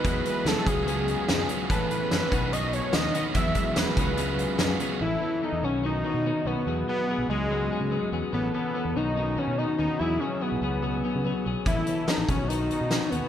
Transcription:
<<
  \new Staff \with { instrumentName = "Analog synth lead" } { \time 4/4 \key a \lydian \tempo 4 = 144 b'8 b'8 a'8 gis'2 r8 | b'8 b'4. dis''8 cis''8 dis''8 dis''8 | e''4 b'2~ b'8 r8 | e'4 dis'8 cis'8 dis'4. b8~ |
b8 b4 gis2 r8 | b8 b4 dis'4 cis'8 dis'8 dis'8 | e'8 cis'8 b2~ b8 r8 | e'4 dis'8 cis'8 dis'4. b8 | }
  \new Staff \with { instrumentName = "Clean electric guitar" } { \time 4/4 \key a \lydian <fis b e' gis'>4 <fis b e' gis'>8 <fis b cis' gis'>8 <fis b cis' gis'>4 <fis b cis' gis'>8 <fis b cis' gis'>8 | <e b cis' a'>4 <e b cis' a'>8 <dis b cis' fis'>8 <dis b cis' fis'>4 <dis b cis' fis'>8 <dis b cis' fis'>8 | <fis b e' gis'>4 <fis b e' gis'>8 <fis b cis' gis'>8 <fis b cis' gis'>4 <fis b cis' gis'>8 <fis b cis' gis'>8 | <e b cis' a'>8 <e b cis' a'>8 <e b cis' a'>8 <dis b cis' fis'>8 <dis b cis' fis'>8 <dis b cis' fis'>8 <dis b cis' fis'>8 <dis b cis' fis'>8 |
<fis b e' gis'>8 <fis b e' gis'>8 <fis b e' gis'>8 <fis b cis' gis'>8 <fis b cis' gis'>8 <fis b cis' gis'>8 <fis b cis' gis'>8 <fis b cis' gis'>8 | <e b cis' a'>8 <e b cis' a'>8 <e b cis' a'>8 <dis b cis' fis'>8 <dis b cis' fis'>8 <dis b cis' fis'>8 <dis b cis' fis'>8 <dis b cis' fis'>8 | <fis b e' gis'>8 <fis b e' gis'>8 <fis b e' gis'>8 <fis b cis' gis'>8 <fis b cis' gis'>8 <fis b cis' gis'>8 <fis b cis' gis'>8 <fis b cis' gis'>8 | <e b cis' a'>8 <e b cis' a'>8 <e b cis' a'>8 <dis b cis' fis'>8 <dis b cis' fis'>8 <dis b cis' fis'>8 <dis b cis' fis'>8 <dis b cis' fis'>8 | }
  \new Staff \with { instrumentName = "Overdriven electric guitar" } { \clef bass \time 4/4 \key a \lydian <e gis b e'>4 <e gis b e'>8 <cis gis b f'>8 <cis gis b f'>4 <cis gis b f'>8 <cis gis b f'>8 | <a, e a cis' e'>4 <a, e a cis' e'>8 <b, dis fis b dis'>8 <b, dis fis b dis'>4 <b, dis fis b dis'>8 <b, dis fis b dis'>8 | <e gis b e'>4 <e gis b e'>8 <cis gis b f'>8 <cis gis b f'>4 <cis gis b f'>8 <cis gis b f'>8 | r1 |
r1 | r1 | r1 | r1 | }
  \new Staff \with { instrumentName = "Fingered electric bass" } { \clef bass \time 4/4 \key a \lydian e,8 r8 dis,16 r16 cis,4. fis,8 r8 | a,,8 r8 fis,16 r16 b,,4. dis,8 r8 | e,8 r8 e,16 r16 cis,4. fis,8 r8 | a,,8 r8. e,16 b,,4~ b,,16 b,8 r16 b,,16 r16 |
e,8 r8. b,,16 cis,4~ cis,16 cis8 r16 e,16 r16 | a,,8 r8. e,16 b,,4~ b,,16 b,8 r16 dis,16 r16 | e,8 r8. b,,16 cis,4~ cis,16 cis8 r16 b,,16 r16 | a,,8 r8. a,,16 b,,4~ b,,16 b,8 r16 dis,16 r16 | }
  \new DrumStaff \with { instrumentName = "Drums" } \drummode { \time 4/4 <hh bd>8 hh8 <hh sn>8 <hh bd>8 hh8 hh8 <hh sn>8 hh8 | <hh bd>8 hh8 <hh sn>8 <hh bd>8 hh8 hh8 <hh sn>8 hh8 | <hh bd>8 <hh bd>8 <hh sn>8 <hh bd>8 hh8 hh8 <hh sn>8 hh8 | r4 r4 r4 r4 |
r4 r4 r4 r4 | r4 r4 r4 r4 | r4 r4 r4 r4 | <hh bd>8 hh8 <hh sn>8 <hh bd>8 hh8 hh8 <hh sn>8 hh8 | }
>>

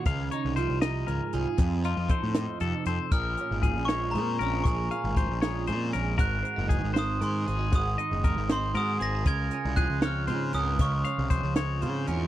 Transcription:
<<
  \new Staff \with { instrumentName = "Glockenspiel" } { \time 6/8 \key des \major \tempo 4. = 78 r2. | r2. | f'''4. des'''8 bes''4 | des'''4 r2 |
ges'''4. ees'''8 c'''4 | ees'''4 r8 c'''8 ees'''8 bes'''8 | aes'''4 ges'''8 f'''4 ees'''8 | des'''4. r4. | }
  \new Staff \with { instrumentName = "Clean electric guitar" } { \time 6/8 \key des \major f''8 des''8 c''8 ees''8 bes'8 aes'8~ | aes'8 f'8 c''4 a'8 c''8 | bes'4 aes'8 des''8 c''8 bes'8~ | bes'8 f''8 c''8 des''8 c''8 bes'8 |
bes'4 aes'8 c''8 bes'8 aes'8~ | aes'8 ees''8 bes'8 c''8 bes'8 aes'8 | bes'4 aes'8 des''8 c''8 bes'8~ | bes'8 f''8 c''8 des''8 c''8 bes'8 | }
  \new Staff \with { instrumentName = "Clean electric guitar" } { \time 6/8 \key des \major << { r8 ees'8 f'8 ees'4 f'8~ | f'8 ees'8 a'8 ees'4 a'8 | aes'8 des'4 aes8 aes'8 des'8 | aes'8 des'4 aes8 aes'8 des'8 |
ges'8 c'16 ees'8. c'8 ges'8 c'16 ees'16 | ges'8 ees'4 c'8 ges'8 c'16 ees'16 | f'8 des'4 c'8 f'8 des'8 | f'8 des'4 c'8 f'8 des'8 | } \\ { <des ees>4 f4 aes,4 | f,4 f4 c4 | bes,4 f4 f,4 | bes,4 f4 f,4 |
aes,4 ees4 aes,4 | aes,4 ees4 aes,4 | des4 f4 aes,4 | des4 f4 aes,4 | } >> }
  \new Staff \with { instrumentName = "Picked electric bass" } { \clef bass \time 6/8 \key des \major des,8 r16 c,8 c,8. des,16 r16 c,16 r16 | f,8. f,16 r16 a,8 r16 f,16 r16 f,16 r16 | bes,,8 r16 aes,,8 bes,,8. bes,8 bes,,8 | bes,,8 r16 aes,,8 bes,,8. bes,8 bes,,8 |
aes,,8 r16 ges,,8 aes,,8. aes,8 aes,,8 | aes,,8 r16 ges,,8 aes,,8. aes,8 aes,,8 | des,8 r16 c,8 des,8. des8 des,8 | des,8 r16 c,8 des,8. des8 fes,8 | }
  \new DrumStaff \with { instrumentName = "Drums" } \drummode { \time 6/8 <hh bd>8 hh8 hh8 <hh sn>8 hh8 hh8 | <hh bd>8 hh8 <hh bd>8 <hh sn>8 hh8 hh8 | <hh bd>8 hh8 <hh bd>8 <hh sn>8 hh8 hh8 | <hh bd>8 hh8 <hh bd>8 <hh sn>8 hh8 hh8 |
<hh bd>8 hh8 <hh bd>8 <hh sn>8 hh8 hh8 | <hh bd>8 hh8 <hh bd>8 <hh sn>8 hh8 hh8 | <hh bd>8 hh8 <hh bd>8 <hh sn>8 hh8 hh8 | <hh bd>8 hh8 <hh bd>8 <hh sn>8 hh8 hh8 | }
>>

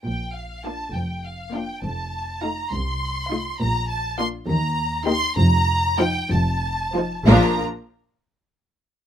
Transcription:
<<
  \new Staff \with { instrumentName = "Violin section" } { \time 6/8 \key bes \major \tempo 4. = 67 g''8 f''8 a''8 g''8 f''8 g''8 | a''4 bes''8 c'''4. | bes''8 a''8 c'''8 bes''4 c'''8 | bes''4 g''8 a''4. |
bes''8 r2 r8 | }
  \new Staff \with { instrumentName = "Violin section" } { \time 6/8 \key bes \major r4 <f' f''>8 r4 <f' f''>8 | r4 <f' f''>8 r4 <f' f''>8 | r4 <f' f''>8 r4 <g' ees''>8 | r4 <f' c''>8 r4 <f' c''>8 |
<f' bes'>8 r2 r8 | }
  \new Staff \with { instrumentName = "Viola section" } { \time 6/8 \key bes \major r4 <bes d'>8 r4 <bes d'>8 | r4 <a ees'>8 r4 <a ees'>8 | r4 <bes d'>8 r4 <bes ees'>8 | r4 <f ees'>8 r4 <f ees'>8 |
<f d'>8 r2 r8 | }
  \new Staff \with { instrumentName = "Cello section" } { \clef bass \time 6/8 \key bes \major bes,4. f,4. | f,4. c,4. | bes,4. ees,4. | f,4. f,4. |
bes,8 r2 r8 | }
  \new Staff \with { instrumentName = "Double bass section" } { \clef bass \time 6/8 \key bes \major bes,,4. f,,4. | f,,4. c,4. | bes,,4. ees,4. | f,,4. f,,4. |
bes,,8 r2 r8 | }
>>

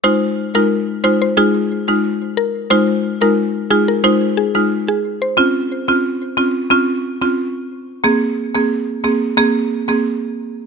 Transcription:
<<
  \new Staff \with { instrumentName = "Synth pluck" } { \time 4/4 \key f \minor \tempo 4 = 90 c''16 r8 bes'16 r8 c''16 c''16 aes'8. r8. bes'16 r16 | c''16 r8 bes'16 r8 aes'16 bes'16 c''16 r16 aes'16 r8 aes'16 r16 c''16 | r1 | r1 | }
  \new Staff \with { instrumentName = "Marimba" } { \time 4/4 \key f \minor <aes ees' f'>8. <aes ees' f'>16 r8 <aes ees' f'>16 r16 <aes ees' f'>16 r8 <aes ees' f'>16 r4 | <aes ees' f'>8. <aes ees' f'>16 r8 <aes ees' f'>16 r16 <aes ees' f'>16 r8 <aes ees' f'>16 r4 | <c' des' f'>8. <c' des' f'>16 r8 <c' des' f'>16 r16 <c' des' f'>16 r8 <c' des' f'>16 r4 | <bes c' aes'>8. <bes c' aes'>16 r8 <bes c' aes'>16 r16 <bes c' aes'>16 r8 <bes c' aes'>16 r4 | }
>>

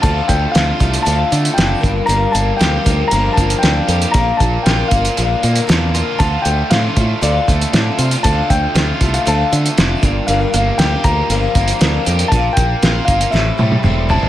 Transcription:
<<
  \new Staff \with { instrumentName = "Grand piano" } { \time 4/4 \key d \minor \tempo 4 = 117 a''8 g''8 f''4 a''4 g''8. r16 | bes''8 a''8 g''4 bes''8 a''8 g''4 | bes''8 a''8 g''8 f''2 r8 | a''8 g''8 f''4 d''4 r4 |
a''8 g''4~ g''16 f''16 a''4. r8 | f''8 f''8 g''8 bes''4. r4 | a''8 g''4 f''8 e''4. a''8 | }
  \new Staff \with { instrumentName = "Twelve-string acoustic guitar" } { \time 4/4 \key d \minor <d f d' f' a'>8 <d' f' a'>8 <f d' f' a'>8 <d' f' a'>8 <d f d' f' a'>8 <d' f' a'>8 <f d' f' a'>8 <f bes d' bes'>8 | <g, d f bes d' bes'>8 <f bes d' bes'>8 <f bes d' bes'>8 <f bes d' bes'>8 <g, d f bes d' bes'>8 <f bes d' bes'>8 <f bes d' bes'>8 <f bes d' bes'>8 | <bes, d f bes d' bes'>8 <f bes d' bes'>8 <f bes d' bes'>8 <f bes d' bes'>8 <bes, d f bes d' bes'>8 <f bes d' bes'>8 <f bes d' bes'>8 <f bes d' bes'>8 | <d f d' f' a'>8 <d' f' a'>8 <f d' f' a'>8 <d' f' a'>8 <d f d' f' a'>8 <d' f' a'>8 <f d' f' a'>8 <d' f' a'>8 |
<d f d' f' a'>8 <d' f' a'>8 <f d' f' a'>8 <d' f' a'>8 <d f d' f' a'>8 <d' f' a'>8 <f d' f' a'>8 <f bes d' bes'>8 | <g, d f bes d' bes'>8 <f bes d' bes'>8 <f bes d' bes'>8 <f bes d' bes'>8 <g, d f bes d' bes'>8 <f bes d' bes'>8 <f bes d' bes'>8 <f bes d' bes'>8 | <bes, d f bes d' bes'>8 <f bes d' bes'>8 <f bes d' bes'>8 <f bes d' bes'>8 <a, e g c' e' a'>8 <g c' e' a'>8 <g c' e' a'>8 <g c' e' a'>8 | }
  \new Staff \with { instrumentName = "Overdriven electric guitar" } { \time 4/4 \key d \minor <d a d' f'>8 a8 f'8 a8 d8 a8 d'8 g,8 | g,8 bes8 g'8 bes8 f8 bes8 d'8 g'8 | bes,8 bes8 f'8 bes8 d8 bes8 d'8 f'8 | d8 a8 f'8 a8 d8 a8 d'8 f'8 |
d8 a8 f'8 a8 d8 a8 d'8 g,8 | g,8 bes8 g'8 bes8 f8 bes8 d'8 g'8 | bes,8 bes8 f'8 bes8 a,8 g8 c'8 e'8 | }
  \new Staff \with { instrumentName = "Fingered electric bass" } { \clef bass \time 4/4 \key d \minor d,8 d,8 d,8 c,8 d,8 d8 fis,,8 g,,8 | g,,8 g,,8 d,8 d,8 g,,8 g,,8 d,8 f,8 | bes,,8 bes,,8 bes,,8 g,,8 bes,,8 bes,8 e,4 | d,8 d,8 a,8 a,8 d,8 d,8 a,8 c8 |
d,8 d,8 d,8 c,8 d,8 d8 f,,8 g,,8 | g,,8 g,,8 d,8 d,8 g,,8 g,,8 d,8 f,8 | bes,,8 bes,,8 bes,,8 g,,8 a,,8 a,8 e,,4 | }
  \new DrumStaff \with { instrumentName = "Drums" } \drummode { \time 4/4 <hh bd>8 <hh bd>8 <hh sn>8 <hh bd>16 hh16 hh8 hh16 hh16 <hh sn>8 <hh bd>8 | hh8 hh8 <hh sn>8 <hh bd>8 hh8 <hh bd>16 hh16 <hh sn>8 hh16 hh16 | <hh bd>8 <hh bd>8 <hh sn>8 <hh bd>16 hh16 hh8 hh16 hh16 <hh sn>8 hh8 | <hh bd>8 hh8 <hh sn>8 <hh bd>8 hh8 <hh bd>16 hh16 <hh sn>8 hh16 hh16 |
<hh bd>8 <hh bd>8 <hh sn>8 <hh bd>16 hh16 hh8 hh16 hh16 <hh sn>8 <hh bd>8 | hh8 hh8 <hh sn>8 <hh bd>8 hh8 <hh bd>16 hh16 <hh sn>8 hh16 hh16 | <hh bd>8 <hh bd>8 <hh sn>8 <hh bd>16 hh16 sn8 tommh16 tommh16 toml8 tomfh16 tomfh16 | }
>>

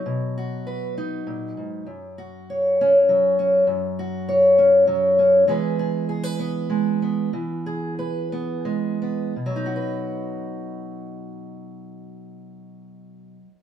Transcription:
\new Staff \with { instrumentName = "Steel-string acoustic guitar" } { \time 3/4 \key b \major \tempo 4 = 98 << { r8 fis'8 b'8 dis'4. | r8 fis'8 cis''8 cis'4 cis'8 | r8 fis'8 cis''8 cis'4 cis'8 | <gis b gis' b'>8 gis'8 gis'16 b'16 b4 b8~ |
b8 gis'8 b'8 b4 b8 | <fis dis' fis' b'>2.~ | <fis dis' fis' b'>2. | } \\ { <b, fis>2 ais,8 gis,8 | fis,2 fis4 | fis,2 fis4 | e2 gis4 |
e2 gis4 | b,2.~ | b,2. | } >> }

